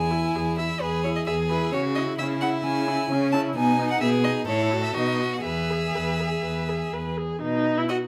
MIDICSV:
0, 0, Header, 1, 5, 480
1, 0, Start_track
1, 0, Key_signature, 4, "major"
1, 0, Tempo, 459067
1, 1812, Time_signature, 4, 2, 24, 8
1, 4676, Tempo, 487013
1, 8226, End_track
2, 0, Start_track
2, 0, Title_t, "Violin"
2, 0, Program_c, 0, 40
2, 0, Note_on_c, 0, 80, 58
2, 566, Note_off_c, 0, 80, 0
2, 610, Note_on_c, 0, 76, 47
2, 846, Note_on_c, 0, 71, 49
2, 861, Note_off_c, 0, 76, 0
2, 1075, Note_off_c, 0, 71, 0
2, 1082, Note_on_c, 0, 73, 47
2, 1132, Note_off_c, 0, 73, 0
2, 1211, Note_on_c, 0, 75, 44
2, 1259, Note_off_c, 0, 75, 0
2, 1323, Note_on_c, 0, 76, 50
2, 1407, Note_off_c, 0, 76, 0
2, 1564, Note_on_c, 0, 71, 49
2, 1792, Note_off_c, 0, 71, 0
2, 1798, Note_on_c, 0, 73, 57
2, 1882, Note_off_c, 0, 73, 0
2, 2042, Note_on_c, 0, 75, 50
2, 2126, Note_off_c, 0, 75, 0
2, 2288, Note_on_c, 0, 76, 59
2, 2371, Note_off_c, 0, 76, 0
2, 2522, Note_on_c, 0, 78, 58
2, 2606, Note_off_c, 0, 78, 0
2, 2761, Note_on_c, 0, 80, 66
2, 3464, Note_off_c, 0, 80, 0
2, 3473, Note_on_c, 0, 81, 66
2, 3557, Note_off_c, 0, 81, 0
2, 3716, Note_on_c, 0, 80, 68
2, 4068, Note_off_c, 0, 80, 0
2, 4088, Note_on_c, 0, 78, 53
2, 4185, Note_off_c, 0, 78, 0
2, 4191, Note_on_c, 0, 76, 67
2, 4275, Note_off_c, 0, 76, 0
2, 4435, Note_on_c, 0, 75, 57
2, 4519, Note_off_c, 0, 75, 0
2, 4671, Note_on_c, 0, 73, 60
2, 5016, Note_off_c, 0, 73, 0
2, 5032, Note_on_c, 0, 76, 47
2, 5146, Note_off_c, 0, 76, 0
2, 5151, Note_on_c, 0, 75, 53
2, 5524, Note_on_c, 0, 78, 41
2, 5539, Note_off_c, 0, 75, 0
2, 5635, Note_off_c, 0, 78, 0
2, 5641, Note_on_c, 0, 76, 55
2, 7068, Note_off_c, 0, 76, 0
2, 8043, Note_on_c, 0, 78, 33
2, 8122, Note_off_c, 0, 78, 0
2, 8226, End_track
3, 0, Start_track
3, 0, Title_t, "Violin"
3, 0, Program_c, 1, 40
3, 0, Note_on_c, 1, 64, 40
3, 809, Note_off_c, 1, 64, 0
3, 857, Note_on_c, 1, 68, 38
3, 1328, Note_off_c, 1, 68, 0
3, 1334, Note_on_c, 1, 68, 42
3, 1815, Note_on_c, 1, 66, 47
3, 1831, Note_off_c, 1, 68, 0
3, 2291, Note_off_c, 1, 66, 0
3, 2297, Note_on_c, 1, 64, 43
3, 3227, Note_off_c, 1, 64, 0
3, 3245, Note_on_c, 1, 61, 51
3, 3711, Note_off_c, 1, 61, 0
3, 3718, Note_on_c, 1, 63, 48
3, 4186, Note_off_c, 1, 63, 0
3, 4191, Note_on_c, 1, 68, 51
3, 4664, Note_off_c, 1, 68, 0
3, 4675, Note_on_c, 1, 69, 51
3, 5144, Note_on_c, 1, 66, 45
3, 5158, Note_off_c, 1, 69, 0
3, 5623, Note_off_c, 1, 66, 0
3, 5629, Note_on_c, 1, 68, 43
3, 7303, Note_off_c, 1, 68, 0
3, 8045, Note_on_c, 1, 75, 32
3, 8124, Note_off_c, 1, 75, 0
3, 8226, End_track
4, 0, Start_track
4, 0, Title_t, "Viola"
4, 0, Program_c, 2, 41
4, 0, Note_on_c, 2, 68, 35
4, 116, Note_on_c, 2, 64, 30
4, 132, Note_off_c, 2, 68, 0
4, 369, Note_on_c, 2, 68, 30
4, 385, Note_off_c, 2, 64, 0
4, 606, Note_on_c, 2, 64, 32
4, 621, Note_off_c, 2, 68, 0
4, 841, Note_off_c, 2, 64, 0
4, 847, Note_on_c, 2, 68, 35
4, 1088, Note_on_c, 2, 64, 33
4, 1103, Note_off_c, 2, 68, 0
4, 1329, Note_on_c, 2, 68, 29
4, 1345, Note_off_c, 2, 64, 0
4, 1571, Note_on_c, 2, 64, 33
4, 1587, Note_off_c, 2, 68, 0
4, 1811, Note_off_c, 2, 64, 0
4, 1819, Note_on_c, 2, 61, 37
4, 2064, Note_on_c, 2, 64, 33
4, 2079, Note_off_c, 2, 61, 0
4, 2303, Note_on_c, 2, 61, 34
4, 2319, Note_off_c, 2, 64, 0
4, 2539, Note_on_c, 2, 64, 37
4, 2554, Note_off_c, 2, 61, 0
4, 2771, Note_off_c, 2, 64, 0
4, 2776, Note_on_c, 2, 61, 40
4, 3012, Note_on_c, 2, 64, 38
4, 3027, Note_off_c, 2, 61, 0
4, 3258, Note_on_c, 2, 61, 35
4, 3274, Note_off_c, 2, 64, 0
4, 3490, Note_on_c, 2, 64, 37
4, 3506, Note_off_c, 2, 61, 0
4, 3721, Note_off_c, 2, 64, 0
4, 3727, Note_on_c, 2, 59, 45
4, 3960, Note_on_c, 2, 63, 38
4, 3976, Note_off_c, 2, 59, 0
4, 4198, Note_on_c, 2, 59, 40
4, 4214, Note_off_c, 2, 63, 0
4, 4438, Note_on_c, 2, 63, 36
4, 4454, Note_off_c, 2, 59, 0
4, 4673, Note_off_c, 2, 63, 0
4, 4679, Note_on_c, 2, 64, 38
4, 4914, Note_on_c, 2, 66, 38
4, 4929, Note_off_c, 2, 64, 0
4, 5145, Note_off_c, 2, 66, 0
4, 5151, Note_on_c, 2, 63, 31
4, 5397, Note_on_c, 2, 66, 30
4, 5411, Note_off_c, 2, 63, 0
4, 5636, Note_off_c, 2, 66, 0
4, 5646, Note_on_c, 2, 71, 34
4, 5888, Note_on_c, 2, 68, 29
4, 5903, Note_off_c, 2, 71, 0
4, 6134, Note_on_c, 2, 71, 29
4, 6149, Note_off_c, 2, 68, 0
4, 6377, Note_on_c, 2, 68, 29
4, 6392, Note_off_c, 2, 71, 0
4, 6613, Note_off_c, 2, 68, 0
4, 6621, Note_on_c, 2, 71, 29
4, 6859, Note_on_c, 2, 68, 28
4, 6874, Note_off_c, 2, 71, 0
4, 7095, Note_on_c, 2, 71, 27
4, 7110, Note_off_c, 2, 68, 0
4, 7337, Note_on_c, 2, 68, 33
4, 7351, Note_off_c, 2, 71, 0
4, 7568, Note_off_c, 2, 68, 0
4, 7574, Note_on_c, 2, 63, 53
4, 7937, Note_on_c, 2, 64, 45
4, 7952, Note_off_c, 2, 63, 0
4, 8039, Note_off_c, 2, 64, 0
4, 8045, Note_on_c, 2, 66, 53
4, 8124, Note_off_c, 2, 66, 0
4, 8226, End_track
5, 0, Start_track
5, 0, Title_t, "Cello"
5, 0, Program_c, 3, 42
5, 0, Note_on_c, 3, 40, 43
5, 311, Note_off_c, 3, 40, 0
5, 369, Note_on_c, 3, 40, 37
5, 793, Note_off_c, 3, 40, 0
5, 849, Note_on_c, 3, 40, 38
5, 1277, Note_off_c, 3, 40, 0
5, 1332, Note_on_c, 3, 40, 38
5, 1755, Note_off_c, 3, 40, 0
5, 1811, Note_on_c, 3, 49, 41
5, 2235, Note_off_c, 3, 49, 0
5, 2294, Note_on_c, 3, 49, 43
5, 2711, Note_off_c, 3, 49, 0
5, 2764, Note_on_c, 3, 49, 47
5, 3186, Note_off_c, 3, 49, 0
5, 3244, Note_on_c, 3, 49, 49
5, 3663, Note_off_c, 3, 49, 0
5, 3723, Note_on_c, 3, 47, 51
5, 4142, Note_off_c, 3, 47, 0
5, 4202, Note_on_c, 3, 47, 49
5, 4622, Note_off_c, 3, 47, 0
5, 4679, Note_on_c, 3, 45, 49
5, 5090, Note_off_c, 3, 45, 0
5, 5150, Note_on_c, 3, 47, 44
5, 5576, Note_off_c, 3, 47, 0
5, 5635, Note_on_c, 3, 40, 40
5, 6066, Note_off_c, 3, 40, 0
5, 6124, Note_on_c, 3, 40, 37
5, 6551, Note_off_c, 3, 40, 0
5, 6608, Note_on_c, 3, 40, 35
5, 7036, Note_off_c, 3, 40, 0
5, 7093, Note_on_c, 3, 40, 34
5, 7524, Note_off_c, 3, 40, 0
5, 7583, Note_on_c, 3, 47, 43
5, 7969, Note_off_c, 3, 47, 0
5, 8226, End_track
0, 0, End_of_file